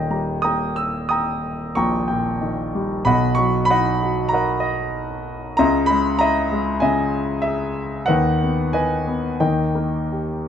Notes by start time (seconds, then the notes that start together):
Already playing: D#1 D#2 A#2 D#3 C#5 D#5 G5
0.10 G3 A#5
0.42 A#3 G5 A#5 D#6
0.76 E6
1.09 G5 A#5 D#6
1.75 A#1 A#2 G5 A#5 C#6
2.08 A#2 G5
2.41 D#3
2.75 G3
3.05 B1 B2 D#5 F#5 B5
3.35 F#3 C#6
3.65 B5
3.70 D#4 D#5 F#5
4.03 F#4
4.29 A#5
4.33 A#4 D#5 F#5
4.60 D#5
5.57 C#2 C#3 D#5 E5 A#5
5.86 B5
5.91 G#3
6.19 E4 D#5 E5 A#5
6.52 G#3
6.80 C#3 D#5 E5 G#5
7.42 G#4 E5
8.06 D#2 D#3 B4 D#5 F#5
8.43 B3
8.73 D#3 B4 D#5 G#5
9.07 B3
9.40 D#2 D#3 A#4 D#5 G5
9.75 A#3
10.12 G4